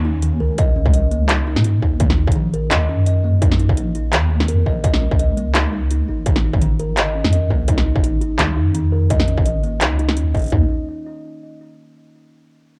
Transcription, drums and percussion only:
0.22 closed hi-hat medium
0.58 kick loud
0.58 closed hi-hat medium
0.86 kick loud
0.94 closed hi-hat medium
1.11 closed hi-hat soft
1.29 clap loud
1.29 closed hi-hat medium
1.56 snare medium
1.64 closed hi-hat medium
1.82 kick medium
2.00 kick loud
2.00 closed hi-hat medium
2.10 snare medium
2.27 kick loud
2.32 closed hi-hat medium
2.54 closed hi-hat soft
2.71 clap loud
2.71 snare soft
2.71 closed hi-hat medium
3.06 closed hi-hat medium
3.42 kick loud
3.42 closed hi-hat medium
3.52 snare soft
3.60 closed hi-hat soft
3.69 kick loud
3.77 closed hi-hat medium
3.95 closed hi-hat soft
4.13 clap loud
4.13 closed hi-hat medium
4.40 snare medium
4.48 closed hi-hat medium
4.66 kick medium
4.84 kick loud
4.84 closed hi-hat medium
4.94 snare medium
5.11 kick loud
5.19 closed hi-hat medium
5.37 closed hi-hat soft
5.55 clap loud
5.55 snare soft
5.55 closed hi-hat medium
5.91 closed hi-hat medium
6.26 kick loud
6.26 closed hi-hat medium
6.36 snare medium
6.53 kick loud
6.61 closed hi-hat medium
6.79 closed hi-hat soft
6.97 clap loud
6.97 closed hi-hat medium
7.24 snare medium
7.32 closed hi-hat medium
7.50 kick medium
7.68 kick loud
7.68 closed hi-hat medium
7.78 snare medium
7.95 kick medium
8.04 closed hi-hat medium
8.21 closed hi-hat soft
8.39 clap loud
8.39 snare soft
8.39 closed hi-hat medium
8.75 closed hi-hat medium
9.10 kick loud
9.10 closed hi-hat medium
9.20 snare medium
9.28 closed hi-hat soft
9.38 kick loud
9.46 closed hi-hat medium
9.64 closed hi-hat soft
9.81 clap loud
9.81 closed hi-hat medium
9.99 closed hi-hat soft
10.09 snare medium
10.17 closed hi-hat medium
10.35 kick medium
10.35 closed hi-hat soft
10.37 closed hi-hat soft
10.39 closed hi-hat soft
10.42 closed hi-hat soft
10.44 closed hi-hat soft
10.46 closed hi-hat soft
10.48 closed hi-hat soft
10.50 kick loud
10.50 closed hi-hat soft
10.50 floor tom loud

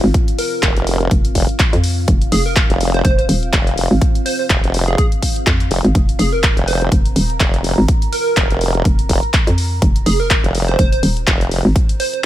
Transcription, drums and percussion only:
0.14 kick loud
0.14 closed hi-hat medium
0.28 closed hi-hat medium
0.39 open hi-hat loud
0.63 kick loud
0.63 clap loud
0.63 closed hi-hat medium
0.77 closed hi-hat medium
0.87 open hi-hat loud
1.01 closed hi-hat soft
1.11 kick loud
1.11 closed hi-hat medium
1.25 closed hi-hat medium
1.35 kick medium
1.35 open hi-hat loud
1.49 closed hi-hat soft
1.59 kick loud
1.59 clap loud
1.59 closed hi-hat medium
1.73 closed hi-hat medium
1.84 open hi-hat loud
2.08 kick loud
2.08 closed hi-hat medium
2.22 closed hi-hat medium
2.32 open hi-hat loud
2.56 kick loud
2.56 clap loud
2.56 closed hi-hat medium
2.70 closed hi-hat medium
2.81 open hi-hat loud
2.94 closed hi-hat soft
3.05 kick loud
3.05 closed hi-hat medium
3.19 closed hi-hat soft
3.29 open hi-hat loud
3.43 closed hi-hat soft
3.53 kick loud
3.53 clap loud
3.53 closed hi-hat medium
3.67 closed hi-hat medium
3.78 open hi-hat loud
4.01 kick loud
4.01 closed hi-hat medium
4.15 closed hi-hat soft
4.26 open hi-hat loud
4.50 kick loud
4.50 clap loud
4.50 closed hi-hat medium
4.64 closed hi-hat soft
4.74 open hi-hat loud
4.98 kick loud
4.98 closed hi-hat medium
5.12 closed hi-hat soft
5.22 kick medium
5.22 open hi-hat loud
5.36 closed hi-hat soft
5.47 kick loud
5.47 clap loud
5.47 closed hi-hat medium
5.60 closed hi-hat medium
5.71 open hi-hat loud
5.85 closed hi-hat soft
5.95 kick loud
5.95 closed hi-hat medium
6.09 closed hi-hat medium
6.19 open hi-hat loud
6.43 kick loud
6.43 clap loud
6.43 closed hi-hat medium
6.57 closed hi-hat soft
6.68 open hi-hat loud
6.81 closed hi-hat soft
6.92 kick loud
6.92 closed hi-hat medium
7.06 closed hi-hat soft
7.16 open hi-hat loud
7.30 closed hi-hat soft
7.40 kick loud
7.40 clap loud
7.40 closed hi-hat medium
7.54 closed hi-hat medium
7.64 open hi-hat loud
7.88 kick loud
7.88 closed hi-hat medium
8.02 closed hi-hat medium
8.13 open hi-hat loud
8.37 kick loud
8.37 clap loud
8.37 closed hi-hat medium
8.50 closed hi-hat medium
8.61 open hi-hat loud
8.75 closed hi-hat soft
8.85 kick loud
8.85 closed hi-hat medium
8.99 closed hi-hat medium
9.09 kick medium
9.09 open hi-hat loud
9.23 closed hi-hat soft
9.34 kick loud
9.34 clap loud
9.34 closed hi-hat medium
9.47 closed hi-hat medium
9.58 open hi-hat loud
9.82 kick loud
9.82 closed hi-hat medium
9.96 closed hi-hat medium
10.06 open hi-hat loud
10.30 kick loud
10.30 clap loud
10.30 closed hi-hat medium
10.44 closed hi-hat medium
10.55 open hi-hat loud
10.68 closed hi-hat soft
10.79 kick loud
10.79 closed hi-hat medium
10.93 closed hi-hat medium
11.03 open hi-hat loud
11.17 closed hi-hat soft
11.27 kick loud
11.27 clap loud
11.27 closed hi-hat medium
11.41 closed hi-hat medium
11.51 open hi-hat loud
11.76 kick loud
11.76 closed hi-hat medium
11.89 closed hi-hat medium
12.00 open hi-hat loud
12.14 closed hi-hat soft

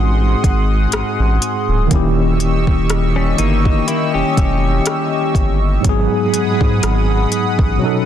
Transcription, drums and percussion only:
0.44 kick medium
0.44 closed hi-hat medium
0.92 cross-stick loud
0.92 closed hi-hat medium
1.42 closed hi-hat medium
1.91 kick loud
1.91 closed hi-hat medium
2.40 closed hi-hat medium
2.67 kick medium
2.90 cross-stick loud
2.90 closed hi-hat medium
3.38 closed hi-hat medium
3.65 kick loud
3.88 closed hi-hat medium
4.37 kick medium
4.37 closed hi-hat medium
4.86 cross-stick loud
4.86 closed hi-hat medium
5.35 kick medium
5.35 closed hi-hat medium
5.84 kick loud
5.84 closed hi-hat medium
6.34 closed hi-hat medium
6.61 kick loud
6.83 cross-stick loud
6.83 closed hi-hat medium
7.32 closed hi-hat medium
7.59 kick medium

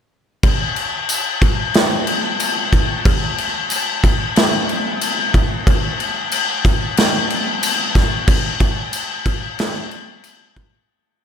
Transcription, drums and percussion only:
0.43 kick loud
0.43 crash medium
0.76 crash medium
1.09 tambourine loud
1.09 crash medium
1.42 kick medium
1.42 crash medium
1.74 snare loud
1.74 crash medium
2.07 crash medium
2.40 tambourine loud
2.40 crash medium
2.73 kick medium
2.73 crash medium
3.05 kick loud
3.05 crash medium
3.38 crash medium
3.70 tambourine loud
3.70 crash medium
4.04 kick medium
4.04 crash medium
4.36 snare loud
4.36 crash medium
4.69 crash medium
5.01 tambourine medium
5.01 crash medium
5.34 kick medium
5.34 crash medium
5.67 kick loud
5.67 crash medium
6.00 crash medium
6.32 tambourine medium
6.32 crash medium
6.65 kick medium
6.65 crash medium
6.97 snare loud
6.97 crash medium
7.30 crash medium
7.63 tambourine loud
7.63 crash medium
7.95 kick medium
7.95 snare soft
7.95 crash medium
8.28 kick loud
8.28 crash medium
8.60 kick medium
8.60 crash medium
8.93 tambourine loud
8.93 crash medium
9.26 kick medium
9.26 crash medium
9.59 snare loud
9.59 crash medium
9.91 crash medium
10.24 tambourine loud
10.24 crash medium
10.56 kick medium
10.56 crash medium

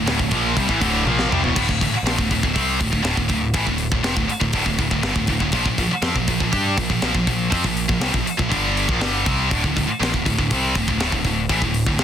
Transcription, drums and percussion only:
0.07 snare loud
0.07 open hi-hat medium
0.19 kick medium
0.31 kick medium
0.31 open hi-hat medium
0.57 kick loud
0.57 open hi-hat medium
0.69 kick medium
0.82 kick medium
0.82 open hi-hat medium
1.07 high tom medium
1.19 snare medium
1.32 mid tom medium
1.44 floor tom medium
1.56 kick loud
1.56 crash loud
1.69 kick medium
1.81 kick medium
1.81 open hi-hat medium
2.07 snare loud
2.07 open hi-hat medium
2.19 kick medium
2.31 kick medium
2.31 open hi-hat medium
2.43 kick medium
2.56 kick medium
2.56 open hi-hat medium
2.81 kick medium
2.81 open hi-hat medium
2.93 kick medium
3.05 snare loud
3.05 open hi-hat medium
3.17 kick medium
3.29 kick medium
3.29 open hi-hat medium
3.54 kick loud
3.54 open hi-hat medium
3.67 kick medium
3.78 open hi-hat medium
3.92 kick medium
4.04 snare loud
4.04 open hi-hat medium
4.17 kick medium
4.30 open hi-hat medium
4.41 kick medium
4.53 kick medium
4.53 open hi-hat medium
4.66 kick medium
4.79 kick medium
4.79 open hi-hat medium
4.91 kick medium
5.03 snare loud
5.03 open hi-hat medium
5.16 kick medium
5.27 kick medium
5.27 open hi-hat medium
5.40 kick medium
5.52 kick loud
5.52 open hi-hat medium
5.66 kick medium
5.78 kick medium
5.78 open hi-hat medium
6.02 snare loud
6.02 open hi-hat medium
6.16 kick medium
6.28 kick medium
6.28 open hi-hat medium
6.40 kick medium
6.53 kick medium
6.53 open hi-hat medium
6.78 kick medium
6.78 open hi-hat medium
6.90 kick medium
7.02 snare loud
7.02 open hi-hat medium
7.15 kick medium
7.27 kick medium
7.27 open hi-hat medium
7.52 kick loud
7.52 open hi-hat medium
7.64 kick medium
7.77 open hi-hat medium
7.89 kick medium
8.01 snare loud
8.01 open hi-hat medium
8.14 kick medium
8.27 open hi-hat medium
8.39 kick medium
8.52 kick medium
8.52 open hi-hat medium
8.77 open hi-hat medium
8.89 kick loud
9.01 snare loud
9.01 open hi-hat medium
9.26 kick loud
9.26 open hi-hat medium
9.51 kick loud
9.51 open hi-hat medium
9.64 kick medium
9.77 kick medium
9.77 open hi-hat medium
10.03 snare loud
10.03 open hi-hat medium
10.14 kick medium
10.26 kick medium
10.26 open hi-hat medium
10.39 kick medium
10.51 kick medium
10.51 open hi-hat medium
10.75 kick medium
10.75 open hi-hat medium
10.88 kick medium
11.00 snare loud
11.00 open hi-hat medium
11.12 kick medium
11.25 kick medium
11.25 open hi-hat medium
11.49 kick loud
11.49 open hi-hat medium
11.62 kick medium
11.74 open hi-hat medium
11.86 kick medium
11.99 snare loud
11.99 open hi-hat medium

